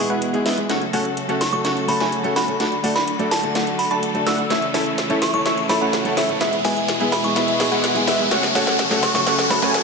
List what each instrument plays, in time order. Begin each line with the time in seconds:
Already playing: string section B2 E3 G#3 E4 G#4, grand piano G#3 B3, riser
0.00 grand piano E4 G#4
0.10 supersaw synth G#3 B3 E4 B4 F#5, analog synth lead F#5
0.22 closed hi-hat
0.33 grand piano G#3 B3 E4 G#4, closed hi-hat
0.46 supersaw synth G#3 B3 E4 B4 E5, analog synth lead E5, snare, open hi-hat
0.57 grand piano G#3 B3 E4 G#4, closed hi-hat
0.69 string section C#3 F#3 A3 F#4 A4, supersaw synth A3 C#4 F#4 C#5 F#5, analog synth lead F#5, snare, closed hi-hat
0.81 closed hi-hat
0.93 grand piano A3 C#4 F#4 A4, supersaw synth A3 C#4 F#4 C#5 F#5, analog synth lead F#5, open hi-hat
1.05 closed hi-hat
1.17 closed hi-hat
1.28 grand piano A3 C#4 F#4 A4, supersaw synth A3 C#4 F#4 C#5 F#5, analog synth lead F#5, closed hi-hat
1.41 synth bell C#6, snare, open hi-hat
1.52 grand piano A3 C#4 F#4 A4, synth bell C#6, closed hi-hat
1.65 supersaw synth A3 C#4 F#4 C#5 F#5, analog synth lead F#5, synth bell C#6, snare, closed hi-hat
1.77 closed hi-hat
1.88 grand piano A3 C#4 F#4 A4, synth bell B5, open hi-hat
2.00 supersaw synth A3 C#4 F#4 C#5 G#5, analog synth lead G#5, synth bell B5, snare, closed hi-hat
2.12 closed hi-hat
2.24 grand piano A3 C#4 F#4 A4, closed hi-hat
2.36 supersaw synth A3 C#4 F#4 C#5 F#5, analog synth lead F#5, synth bell B5, snare, open hi-hat
2.47 grand piano A3 C#4 F#4 A4, closed hi-hat
2.60 string section D3 A4, supersaw synth A3 D4 F#4 D5 F#5, analog synth lead F#5, snare, closed hi-hat
2.72 closed hi-hat
2.83 grand piano A3 D4 F#4 A4, supersaw synth A3 D4 F#4 D5 F#5, analog synth lead F#5, open hi-hat
2.96 synth bell B5, snare
3.08 closed hi-hat
3.19 grand piano A3 D4 F#4 A4, supersaw synth A3 D4 F#4 D5 F#5, analog synth lead F#5, closed hi-hat
3.31 synth bell A5, snare, open hi-hat
3.43 grand piano A3 D4 F#4 A4, closed hi-hat
3.55 supersaw synth A3 D4 F#4 D5 F#5, analog synth lead F#5, snare, closed hi-hat
3.67 closed hi-hat
3.79 synth bell B5, open hi-hat
3.91 supersaw synth A3 D4 F#4 D5 A5, analog synth lead A5, synth bell B5, closed hi-hat
4.03 closed hi-hat
4.14 grand piano A3 D4 F#4 A4, closed hi-hat
4.26 supersaw synth A3 D4 F#4 D5 F#5, analog synth lead F#5, synth bell E6, snare, open hi-hat
4.38 closed hi-hat
4.50 string section C#3 E3 E4, supersaw synth A3 C#4 E4 C#5 E5, analog synth lead E5, snare, closed hi-hat
4.62 closed hi-hat
4.74 grand piano A3 C#4 E4 A4, supersaw synth A3 C#4 E4 C#5 E5, analog synth lead E5, snare, open hi-hat
4.86 closed hi-hat
4.98 snare, closed hi-hat
5.09 grand piano A3 C#4 E4 A4, supersaw synth A3 C#4 E4 C#5 E5, analog synth lead E5, closed hi-hat
5.22 synth bell C#6, snare, open hi-hat
5.33 grand piano A3 C#4 E4 A4, synth bell C#6, closed hi-hat
5.46 supersaw synth A3 C#4 E4 C#5 E5, analog synth lead E5, synth bell C#6, snare, closed hi-hat
5.58 closed hi-hat
5.69 grand piano A3 C#4 E4 A4, synth bell B5, snare, open hi-hat
5.81 supersaw synth A3 C#4 E4 C#5 F#5, analog synth lead F#5, synth bell B5, closed hi-hat
5.93 snare, closed hi-hat
6.05 grand piano A3 C#4 E4 A4, closed hi-hat
6.17 supersaw synth A3 C#4 E4 C#5 E5, analog synth lead E5, snare, open hi-hat
6.28 grand piano A3 C#4 E4 A4, closed hi-hat
6.41 string section B2 G#3 G#4, supersaw synth G#3 B3 E4 B4 E5, analog synth lead E5, snare, closed hi-hat
6.53 closed hi-hat
6.64 grand piano G#3 B3 E4 G#4, supersaw synth G#3 B3 E4 B4 E5, analog synth lead E5, synth bell G#5, snare, open hi-hat
6.77 closed hi-hat
6.88 snare, closed hi-hat
7.00 grand piano G#3 B3 E4 G#4, supersaw synth G#3 B3 E4 B4 E5, analog synth lead E5, closed hi-hat
7.12 synth bell B5, snare, open hi-hat
7.24 grand piano G#3 B3 E4 G#4, synth bell C#6, closed hi-hat
7.36 supersaw synth G#3 B3 E4 B4 E5, analog synth lead E5, snare, closed hi-hat
7.48 closed hi-hat
7.59 grand piano G#3 B3 E4 G#4, snare, open hi-hat
7.72 supersaw synth G#3 B3 E4 B4 F#5, analog synth lead F#5, closed hi-hat
7.84 snare, closed hi-hat
7.95 grand piano G#3 B3 E4 G#4, closed hi-hat
8.07 supersaw synth G#3 B3 E4 B4 E5, analog synth lead E5, snare, open hi-hat
8.19 grand piano G#3 B3 E4 G#4, closed hi-hat
8.31 string section C#3 F#3 A3 F#4 A4, supersaw synth A3 C#4 F#4 C#5 F#5, analog synth lead F#5, snare, closed hi-hat
8.43 snare, closed hi-hat
8.54 grand piano A3 C#4 F#4 A4, supersaw synth A3 C#4 F#4 C#5 F#5, analog synth lead F#5, snare, open hi-hat
8.67 snare
8.79 snare, closed hi-hat
8.90 grand piano A3 C#4 F#4 A4, supersaw synth A3 C#4 F#4 C#5 F#5, analog synth lead F#5, snare, closed hi-hat
9.03 synth bell C#6, snare, open hi-hat
9.14 grand piano A3 C#4 F#4 A4, synth bell C#6, snare, closed hi-hat
9.27 supersaw synth A3 C#4 F#4 C#5 F#5, analog synth lead F#5, synth bell C#6, snare, closed hi-hat
9.39 snare, closed hi-hat
9.50 grand piano A3 C#4 F#4 A4, synth bell B5, snare, open hi-hat
9.62 supersaw synth A3 C#4 F#4 C#5 G#5, analog synth lead G#5, synth bell B5, snare, closed hi-hat
9.74 snare, closed hi-hat